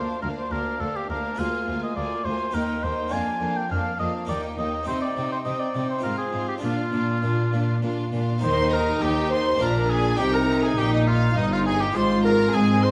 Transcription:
Already playing: D2 A#3 D4 F4 C5 F5
0.22 D2 A#3 D4 A#4 F5
0.39 C5
0.51 D2 A#3 D4 A#4 F5
0.80 D2 A#3 D4 A4 F5
0.96 G4
1.09 D2 A#3 D4 A#4 F5
1.35 A#3 F4 G#4
1.39 D2 A#3 F4 F5 G#5
1.67 D2 A#3 F4 G#5
1.83 D#5
1.96 D2 A#3 F4 D5 G#5
2.25 D2 A#3 F4 C5 G#5
2.51 A#3 D#4 G4 A#4 G5
2.55 D#2 A#3 D#4
2.83 D#2 A#3 D#4 C5 G5
3.08 A#3 D4 F4
3.12 F2 A#3 D4 F5 G#5
3.41 F2 A#3 D4 F5
3.57 G5
3.70 F2 A#3 D4 F5
3.99 F2 A#3 D4 D#5 F5
4.25 A#3 D#4 G4 D5 G5
4.29 D#2 A#3 D#4
4.58 D#2 A#3 D#4 D#5 G5
4.83 C3 C4 D#4 G4
4.87 C3 C4 D#4 C5 G5
5.02 D5
5.16 C3 C4 D#4 G5
5.32 C5
5.45 C3 C4 D#4 D#5 G5
5.59 D5
5.74 C3 C4 D#4 G5
5.90 C5
5.99 C4 F4
6.03 G#2 C4 F4 A#4 F5
6.17 G#4
6.33 G#2 C4 F4 F5
6.48 G4
6.58 D4 F4
6.62 A#2 D4 F4 F5
6.92 A#2 D4 F4 F5
7.23 A#2 D4 F4 F5
7.53 A#2 D4 F4 F5
7.82 A#2 D4 F4 F5
8.12 A#2 D4 F4 F5
8.38 A#3 D#4 G4
8.42 D#2 D#3 D#4 C5 C6
8.72 A#4 A#5
9.02 D#2 G4 G5
9.31 C5 C6
9.56 A#3 D4 F4
9.60 A#1 A#2 D4 A#4 A#5
9.90 G#4 G#5
10.17 C2 C3 D#4 G4 G5
10.33 A#4 A#5
10.63 G#4 G#5
10.77 A#1 A#2 G4 G5
10.92 D#4 D#5
11.07 F4 F5
11.36 G1 G2 D#4 D#5
11.52 F4 F5
11.66 G#4 G#5
11.80 G4 G5
11.92 G#1 G#2 D#4 F4 C5 C6
11.96 C5
12.25 A#4 A#5
12.53 G#2 G#3 C4 G#4 G#5
12.82 C5 C6

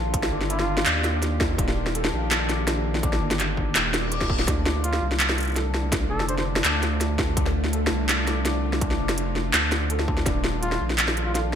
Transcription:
Already playing: A#1 D#3 A#3 D4 F4 G4 A4
0.14 kick, closed hi-hat
0.23 snare
0.32 G1 D5
0.41 snare
0.50 D4 F4, closed hi-hat
0.59 snare
0.77 snare
0.86 D#2 D4, clap, closed hi-hat
1.04 snare, closed hi-hat
1.22 snare, closed hi-hat
1.40 kick, snare
1.58 D#1, kick, closed hi-hat
1.68 snare
1.86 snare
1.95 A4, closed hi-hat
2.04 snare
2.13 A#1
2.31 clap, snare, closed hi-hat
2.49 D5, snare, closed hi-hat
2.67 D4, snare, closed hi-hat
2.95 snare
3.03 D4, kick, closed hi-hat
3.13 snare
3.21 G1
3.31 snare, closed hi-hat
3.40 clap, closed hi-hat
3.57 kick
3.76 D#1, clap, snare, closed hi-hat, reverse cymbal
3.94 snare, closed hi-hat
4.12 D5, closed hi-hat
4.21 kick, snare
4.30 kick
4.39 snare
4.48 D2 D3 A3 D4 F4, kick, snare, closed hi-hat
4.66 snare
4.84 F4, closed hi-hat
4.93 snare
5.02 C2
5.11 snare
5.20 clap, closed hi-hat
5.29 snare
5.38 closed hi-hat
5.40 closed hi-hat
5.43 closed hi-hat
5.45 closed hi-hat
5.50 closed hi-hat
5.52 closed hi-hat
5.54 A4, snare, closed hi-hat
5.56 closed hi-hat
5.74 snare
5.92 kick, snare, closed hi-hat
6.10 F1 A4 D5
6.20 snare
6.28 D4 C5, closed hi-hat
6.38 C5, snare
6.56 snare
6.64 D2 D4, clap, closed hi-hat
6.83 snare, closed hi-hat
7.01 snare, closed hi-hat
7.19 kick, snare
7.37 D2 C4, kick, closed hi-hat
7.46 snare
7.64 snare
7.73 A4, closed hi-hat
7.87 snare
7.91 C2
8.09 clap, snare, closed hi-hat
8.27 D5, snare, closed hi-hat
8.45 D4, snare, closed hi-hat
8.73 snare
8.81 D4, kick, closed hi-hat
8.91 snare
9.00 F1
9.09 snare, closed hi-hat
9.18 closed hi-hat
9.36 snare
9.54 D2, clap, snare, closed hi-hat
9.72 snare, closed hi-hat
9.90 A4, closed hi-hat
9.99 snare
10.08 kick
10.17 snare
10.26 D#1 D#3 A#3 D4 G4, kick, snare, closed hi-hat
10.44 snare
10.62 F4, closed hi-hat
10.72 snare
10.81 A#1
10.90 snare
10.98 clap, closed hi-hat
11.08 snare
11.17 closed hi-hat
11.26 F4
11.35 F4 A4, snare, closed hi-hat

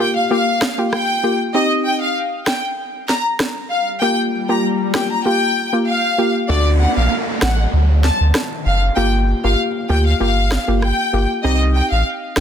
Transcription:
Already playing: downlifter
0.00 A#3 F4 G4 G5
0.16 F5
0.31 A#3 F4 G4 F5
0.61 cross-stick, snare
0.78 A#3 F4 G4
0.93 G5, cross-stick
1.23 A#3 F4 G4
1.54 C4 D#4 G4 D#5, swell
1.85 G5
2.02 F5
2.47 G5, cross-stick, snare
3.09 A#5, snare
3.39 cross-stick, snare
3.71 F5
4.02 A#3 F4 G4 G5
4.49 A#3 F4 G4 A#5
4.94 A#3 F4 G4 G5, cross-stick, snare
5.11 A#5
5.25 A#3 F4 G4 G5
5.73 A#3 F4 G4
5.87 F5
6.18 A#3 F4 G4
6.49 D2 A3 D4 F#4 D5, downlifter
6.80 F#5
6.97 A#1 F5
7.41 A1 F#5, cross-stick, snare
7.73 D2
8.04 A5, snare
8.20 D2
8.34 cross-stick, snare
8.66 F#1 F5
8.96 G1 A#3 F4 G4 G5
9.44 G1 A#3 F4 G4 F5
9.89 D2 A#3 F4 G4 G5
10.06 F5
10.20 G1 A#3 F4 G4 F5
10.51 cross-stick, snare
10.68 G1 A#3 F4 G4
10.82 G5, cross-stick
11.13 G1 A#3 F4 G4
11.44 C2 C4 D#4 G4 D#5
11.75 G5
11.91 A1 F5
12.36 G1 G5, cross-stick, snare

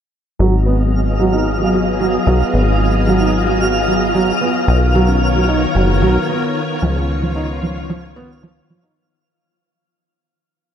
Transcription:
0.39 G#1 F#3 B3 F4 G#4 D#5 F5
0.66 B3
1.20 F#3
1.33 D#4
1.60 F#3
1.73 F#4
2.00 F#3
2.27 B1 F#3
2.54 G#1 B3
3.07 F#3
3.21 D#4
3.47 F#3
3.61 F#4
3.88 F#3
4.14 F#3
4.41 B3
4.68 B1 D#3 B3 A#4 C#5
4.95 F#3
5.08 C#4
5.35 F#3
5.48 D#4
5.75 F#1 F#3
6.02 B1 F#3
6.29 B3
6.82 C#2 F3 F4
6.96 C#4
7.22 F3
7.36 D#4
7.63 F3
7.89 F3
8.16 B3
8.43 F3
8.70 F3
8.83 D#4

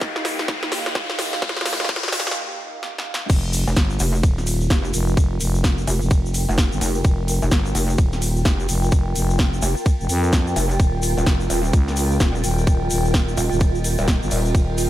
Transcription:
Already playing: A#3 D#4 F4 G4 A#4 D#5 F5 G5, riser
0.01 kick, snare
0.16 snare
0.25 snare, open hi-hat
0.39 snare
0.48 kick, snare
0.63 snare
0.72 snare, open hi-hat
0.86 snare
0.95 kick, snare
1.10 snare
1.19 snare, open hi-hat
1.33 snare
1.42 kick, snare
1.49 snare
1.57 snare
1.61 snare
1.66 snare, open hi-hat
1.73 snare
1.80 snare
1.85 snare
1.89 kick, snare
1.96 snare
2.03 snare
2.08 snare
2.12 snare, open hi-hat
2.20 snare
2.27 snare
2.31 snare
2.83 snare
2.98 snare
3.14 snare
3.30 F1 C4 F4 G4 F5, kick, crash, ride, shaker
3.40 A#4
3.53 open hi-hat, ride, shaker
3.67 F1, shaker
3.76 G1, kick, snare, ride, shaker
3.90 shaker
3.99 F1, open hi-hat, ride, shaker
4.15 shaker
4.23 D#1, kick, ride, shaker
4.38 snare, shaker
4.46 open hi-hat, ride, shaker
4.61 shaker
4.70 F1, kick, snare, ride, shaker
4.84 shaker
4.94 F1, open hi-hat, ride, shaker
5.05 G5, shaker
5.17 F1, kick, ride, shaker
5.40 F1, open hi-hat, ride, shaker
5.55 shaker
5.64 kick, snare, ride, shaker
5.78 shaker
5.87 F1, open hi-hat, ride, shaker
6.02 F1, shaker
6.11 kick, ride, shaker
6.26 shaker
6.34 open hi-hat, ride, shaker
6.49 F1, shaker
6.58 kick, snare, ride, shaker
6.72 G1, shaker
6.81 F1, open hi-hat, ride, shaker
6.94 shaker
7.04 F1, kick, ride, shaker
7.28 open hi-hat, ride, shaker
7.42 F1, shaker
7.51 G1, kick, snare, ride, shaker
7.66 shaker
7.75 F1, open hi-hat, ride, shaker
7.89 shaker
7.98 D#1, kick, ride, shaker
8.13 snare, shaker
8.22 open hi-hat, ride, shaker
8.36 shaker
8.45 F1, kick, snare, ride, shaker
8.60 shaker
8.69 F1, open hi-hat, ride, shaker
8.83 shaker
8.92 F1, kick, ride, shaker
9.15 F1, open hi-hat, ride, shaker
9.30 shaker
9.39 kick, snare, ride, shaker
9.54 shaker
9.62 F1, open hi-hat, ride, shaker
9.77 shaker
9.86 kick, ride, shaker
10.00 F1, shaker
10.09 F2, open hi-hat, ride, shaker
10.23 shaker
10.32 kick, snare, ride, shaker
10.47 shaker
10.56 F1, open hi-hat, ride, shaker
10.71 shaker
10.80 D#1 G4 A#4, kick, ride, shaker
11.02 open hi-hat, ride, shaker
11.17 D#1, shaker
11.26 F1, kick, snare, ride, shaker
11.40 shaker
11.50 D#1, open hi-hat, ride, shaker
11.65 shaker
11.73 C#2, kick, ride, shaker
11.88 snare, shaker
11.96 open hi-hat, ride, shaker
12.08 D#5, shaker
12.20 D#1, kick, snare, ride, shaker
12.35 shaker
12.44 D#1, open hi-hat, ride, shaker
12.58 shaker
12.67 D#1, kick, ride, shaker
12.90 D#1, open hi-hat, ride, shaker
13.05 shaker
13.14 kick, snare, ride, shaker
13.28 shaker
13.37 D#1, open hi-hat, ride, shaker
13.52 D#1, shaker
13.60 kick, ride, shaker
13.75 shaker
13.84 open hi-hat, ride, shaker
13.98 D#1, shaker
14.08 kick, snare, ride, shaker
14.22 G1, shaker
14.31 D#1, open hi-hat, ride, shaker
14.45 shaker
14.55 D#1, kick, ride, shaker
14.78 open hi-hat, ride, shaker

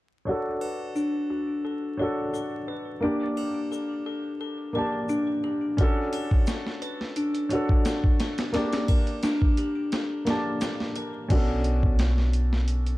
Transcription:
0.25 D4 F#4 A4 C#5
0.31 A4
0.61 B4, triangle
0.96 D4, shaker
1.30 F#4
1.65 A4
1.97 D4 F#4 A4 C#5
2.03 A4
2.34 A4, shaker
2.68 B4
3.01 A#3 D4 G4
3.37 G4, triangle
3.71 A4, shaker
4.06 A4
4.41 A4
4.73 A#3 D4 G4 A#4
4.78 A5
5.09 D4, shaker
5.44 G4
5.77 C#4 D4 F#4 A4, kick, closed hi-hat
5.82 A4
6.13 A4, closed hi-hat, triangle
6.31 kick
6.47 A4, snare, closed hi-hat, shaker
6.67 snare
6.82 B4, closed hi-hat
7.01 snare
7.16 D4, closed hi-hat
7.35 closed hi-hat
7.49 D4 F#4 C#5, closed hi-hat
7.55 A4
7.69 kick
7.85 A4, snare, closed hi-hat, shaker
8.04 kick
8.20 A4, snare, closed hi-hat
8.38 snare, closed hi-hat
8.53 A#3 D4 G4 A4, snare, closed hi-hat
8.73 snare, closed hi-hat
8.88 A#4, kick, closed hi-hat, triangle
9.07 closed hi-hat
9.23 D4, snare, closed hi-hat, shaker
9.42 kick
9.57 G4, closed hi-hat
9.92 A4, snare, closed hi-hat
10.25 A#3 D4 G4 A4, snare, closed hi-hat
10.30 A5
10.61 A4, snare, closed hi-hat, shaker
10.80 snare
10.95 A#4, closed hi-hat
11.28 B1 C#4 D4 F#4, kick, closed hi-hat, crash
11.34 A4
11.64 closed hi-hat
11.83 kick
11.99 snare, closed hi-hat
12.18 snare
12.33 closed hi-hat
12.53 snare
12.68 closed hi-hat
12.86 closed hi-hat

